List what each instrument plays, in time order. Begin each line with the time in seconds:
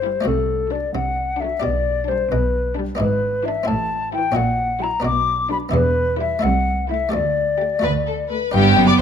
Already playing: double bass section G1, cello section G2, harpsichord G2 E4 G4, flute C5
0.02 viola section G3, violin section E4 G4
0.21 harpsichord A3 D4 F#4
0.25 double bass section C2, harpsichord C3, cello section C3, flute A4
0.70 viola section F#3, violin section D4 A4, flute D5
0.94 double bass section C2, cello section C3, harpsichord C3, flute F#5
1.39 viola section F#3, violin section D4 A4, flute E5
1.60 double bass section B1, harpsichord B2 D4 G4, cello section B2, flute D5
2.08 viola section G3, violin section D4 G4, flute C5
2.31 double bass section B1, cello section B2, harpsichord B2, flute B4
2.75 viola section G3, violin section D4 G4
2.95 harpsichord B3 D4 E4
2.99 double bass section G#1, cello section G#2, harpsichord G#2, flute B4
3.44 viola section E3, violin section D4 B4, flute E5
3.63 harpsichord C4 E4, flute A5
3.68 double bass section A1, harpsichord A2, cello section A2
4.13 viola section E3, violin section E4 C5, flute G5
4.32 harpsichord C#4 E4 F#4
4.36 double bass section A#1, cello section A#2, harpsichord A#2, flute F#5
4.81 viola section F#3, violin section E4 C#5, flute A#5
5.00 harpsichord B3 D4 F#4
5.05 double bass section B1, harpsichord B2, cello section B2, flute D6
5.50 viola section F#3, violin section D4 B4, flute B5
5.69 harpsichord B3 E4 G4
5.74 double bass section E1, harpsichord E2, cello section E2, flute B4
6.19 viola section G3, violin section E4 B4, flute E5
6.39 harpsichord A3 E4 A4, flute F#5
6.43 double bass section C2, cello section C2, harpsichord C2
6.88 viola section A3, violin section E4 A4, flute E5
7.09 harpsichord A3 G4 A4
7.13 harpsichord D2, cello section D2, double bass section D2, flute D5
7.59 viola section A3, violin section G4 A4
7.79 harpsichord A3 F#4 A4, violin section B4
7.83 cello section D2, harpsichord D2, double bass section D2
8.07 violin section A4
8.29 viola section A3, violin section A4 B4
8.51 double bass section G1, cello section G2, harpsichord G2 D4 B4, viola section B3, violin section G4 G5, flute G5
8.77 double bass section F#1, harpsichord F#2, cello section F#2
8.87 violin section D5 D6, flute D6